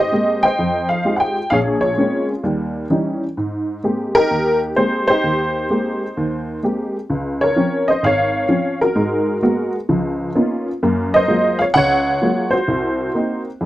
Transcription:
honky-tonk piano
Already playing: D#5
0.00 G4 C5
0.12 G#3 A#3 C4 G4
0.43 C5 D#5 G5
0.59 F2
0.89 F5
1.05 G#3 D#4 F4 G4
1.16 F#5 G5
1.50 A#1 G#4 C#5 F5
1.81 F4 G#4 C#5
1.97 G#3 A#3 C4 C#4
2.44 D#2 G3
2.90 E3 G3 C#4 D#4
3.37 G#2
3.84 G#3 A#3 C4 G4
4.15 D#4 G4 A#4
4.31 D#2
4.76 G#3 A#3 C4 G4 C5
5.08 D#4 G4 C5
5.24 D#2
5.70 G#3 A#3 C4 G4
6.17 D#2
6.63 G#3 A#3 C4 G4
7.10 C#2
7.41 A#4 C#5
7.56 F3 C4 C#4
7.88 C5 D#5
8.03 G#1 C#5 F5
8.49 F3 C4 C#4
8.81 F#4 A#4
8.96 G#2 G#3
9.42 G#3 A#3 B3 F#4
9.89 C#2 F3
10.35 A#3 B3 C#4 D#4 F4
10.83 F#2 A#3
11.14 C5 D#5
11.28 F#3 G#3 A#3 F4
11.59 C#5 F5
11.74 C#2 C#5 F#5
12.22 F#3 G#3 A#3 F4
12.51 F#4 C5
12.68 C2
13.14 A#3 C4 D#4
13.61 F2

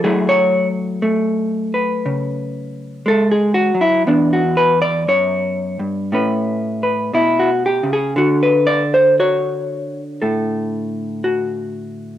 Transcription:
hollow-body jazz guitar
0.04 F#3 A3 E4 G#4
0.29 C#5
1.02 A3
1.74 B4
2.06 C#3
3.06 G#3 A4
3.32 G#4
3.54 F#4
3.75 F#3
3.81 E4
4.07 E2 B3 D4
4.33 F#4
4.57 B4
4.82 D5
5.08 F#2 C#5
5.79 G2
6.12 A2 A3 C#4 B4
6.83 B4
7.14 B2 E4
7.39 F#4
7.66 G4
7.83 C#3
7.93 G#4
8.16 D3 F#4
8.43 B4
8.67 D5
8.94 C5
9.20 F#4 C#5
10.22 A2 A4
11.24 F#4

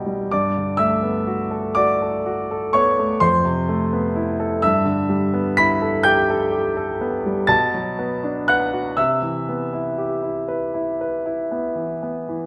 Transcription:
grand piano
Already playing: E2 B2 G3 B3 F#4 G5 G6
0.06 G3
0.31 G2 D5 D6
0.57 D3
0.77 A3 E5 E6
1.03 B3
1.27 F#4
1.51 A4
1.75 F#4 D5 D6
2.02 A4
2.26 F#4
2.51 A4
2.73 B3 C#5 C#6
2.99 A3
3.20 F2 C5 C6
3.45 C3
3.69 A3
3.93 B3
4.16 E4
4.40 A4
4.62 G2 E5 E6
4.85 D3
5.09 G3
5.34 B3
5.57 E4 B5 B6
5.82 A4
6.03 G4 G5 G6
6.30 A4
6.51 G4
6.77 A4
7.01 B3
7.26 G3
7.47 B2 A5 A6
7.74 F#3
7.99 B3
8.23 D4
8.48 B4 F#5 F#6
8.73 F#4
8.97 C3 E5 E6
9.22 E3
9.49 B3
9.73 E4
9.98 G4
10.23 E4
10.48 B4
10.74 E4
11.01 B4
11.26 E4
11.51 B3
11.75 E3
12.03 B3
12.29 E3

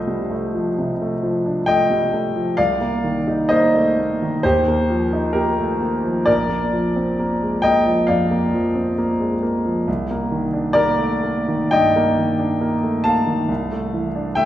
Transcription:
grand piano
Already playing: C2 F3 A3 D4 C5 D#5
0.07 G3
0.31 A3
0.54 F3
0.78 C3
1.02 A3
1.23 F3
1.46 D4
1.66 A3 D#5 G5
1.90 G3
2.13 A3
2.36 F3
2.57 C2 D5 F5
2.81 A#3
3.04 D#3
3.28 D#4
3.49 A#3 C5 D#5
3.75 A3
3.99 A#3
4.22 D#3
4.43 D#2 G4 C5
4.68 A#3
4.90 F3
5.13 D#4
5.33 A#3 G4 A#4
5.58 A3
5.81 A#3
6.04 F3
6.26 A#1 A#4 D5
6.49 A#3
6.73 F3
6.96 C4
7.20 A#3
7.42 G#3
7.62 A#3 D#5 G5
7.86 F3
8.07 F2 D5 F5
8.31 A#3
8.54 F3
8.75 C4
8.98 A#3
9.20 G#3
9.43 A#3
9.66 F3
9.88 C2
10.11 A#3
10.32 D#3
10.53 D4
10.73 A#3 A#4 D5
10.98 A3
11.24 A#3
11.48 D#3
11.71 G2 D#5 G5
11.96 A#3
12.18 D#3
12.39 D4
12.61 A#3
12.83 A3
13.04 A#3 F5 A5
13.26 D#3
13.48 C2
13.72 A3
13.94 E3
14.16 D4
14.35 A3 E5 G5

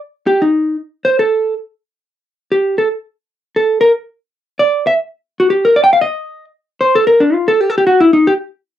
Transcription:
hollow-body jazz guitar
0.27 G4
0.42 D#4
1.05 C5
1.19 A4
2.52 G4
2.78 A4
3.56 A4
3.81 A#4
4.59 D5
4.87 E5
5.40 F#4
5.50 G4
5.65 A#4
5.76 D5
5.84 G5
5.93 F5
6.01 D#5
6.81 C5
6.95 A4
7.07 A#4
7.20 D4
7.34 F4
7.48 A4
7.61 G4
7.70 A4
7.78 G4
7.87 F#4
8.00 E4
8.13 D#4
8.27 G4

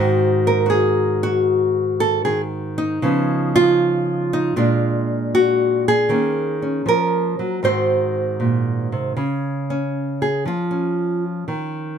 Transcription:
nylon-string guitar
Already playing: G#2 D#3 C4 F#4
0.47 A#4
0.66 F#4 G#4
1.23 F#4
2.00 A4
2.25 D#3 G#4
2.78 D#4
3.02 C#3 F3 B3
3.56 F4
4.33 D#4
4.56 A#2 G#3 D4 F4
5.35 F#4
5.88 G#4
6.09 D#3 A#3 C#4
6.62 C#4
6.86 F3 A#4
7.39 F#3
7.63 G#2 D#3 C4 F#4 C5
8.40 A#2
8.92 C3
9.17 C#3
9.70 C#4
10.22 G#4
10.45 F3 F4
10.71 C#4
11.48 D#3

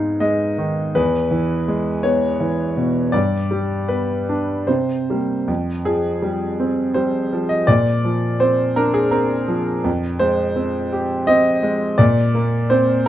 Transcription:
grand piano
Already playing: G#2 G#3 B3 D#4 F5
0.20 G#3 D#5
0.58 D#3
0.95 E2 B4
1.31 E3
1.68 G#3
2.03 B3 C#5
2.40 E3
2.77 B2
3.12 G2 D5
3.51 G3
3.88 B3 B4
4.29 D4
4.67 C3 C5
5.10 G3 A#3
5.48 F2
5.85 F3 G#4
6.22 G3
6.60 C4
6.94 G3 C5
7.33 F3
7.49 D#5
7.67 A#2 D5
8.04 F3
8.40 C4 C5
8.76 D4 A#4
8.94 G#4
9.11 C4 A#4
9.48 F3
9.84 F2
10.19 G#3 C5
10.56 C4
10.93 G4
11.27 C4 D#5
11.63 G#3
11.98 A#2 D5
12.34 A#3
12.70 C4 C5

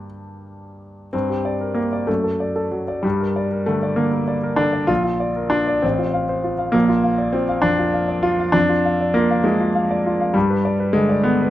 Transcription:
grand piano
Already playing: G2 A#3 D4 G4
1.13 G2 C4
1.30 G4
1.45 D5
1.61 A#4
1.74 A#3 G4
1.93 D5
2.07 F#2 A3
2.24 A4
2.40 D5
2.56 A4
2.71 F#3
2.88 D5
3.03 G2 G3
3.20 A#4
3.36 D5
3.52 A#4
3.66 D3 A3
3.83 D5
3.96 D3 A#3
4.13 A#4
4.28 D5
4.43 A#4
4.56 D3 D4
4.73 D5
4.87 A#1 F4
5.04 F4
5.20 D5
5.36 A#4
5.50 D4 F4
5.67 D5
5.82 A1 C4
5.99 F4
6.14 F5
6.29 C5
6.44 F4
6.59 F5
6.72 A#1 A#3
6.89 F4
7.04 F5
7.18 D5
7.33 C4 F4
7.49 F5
7.62 F2 D4
7.79 F4
7.94 F5
8.08 D5
8.23 F4
8.40 F5
8.52 F2 D4
8.69 F4
8.85 F5
9.01 D5
9.14 A#3 F4
9.31 F5
9.44 F3 G#3
9.60 F4
9.75 F5
9.91 D5
10.06 F4
10.21 F5
10.34 G2 G3
10.50 B4
10.65 D5
10.80 B4
10.93 D3 G#3
11.09 D5
11.24 D3 B3
11.42 B4

